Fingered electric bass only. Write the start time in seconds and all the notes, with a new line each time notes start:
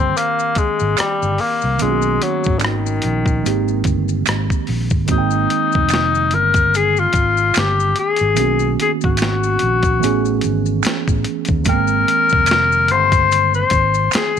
Already playing: G1
0.57 muted fingered electric bass stroke
0.81 G#1
1.00 muted fingered electric bass stroke
1.22 G1
1.64 C2
1.82 B1
2.47 G#1
3.05 A#1
3.46 G#1
3.86 G1
4.28 G#1
4.69 A#1
4.92 G#1
5.09 G#1
5.76 F1
6.34 G1
7.15 G#1
7.57 G1
8.21 G#1
8.39 B1
9.05 G#1
9.62 A#1
10.03 A1
10.45 G#1
10.85 muted fingered electric bass stroke
11.08 A1
11.50 D#2
11.67 G#1
12.34 F1
12.91 G1
13.72 G#1
14.14 muted fingered electric bass stroke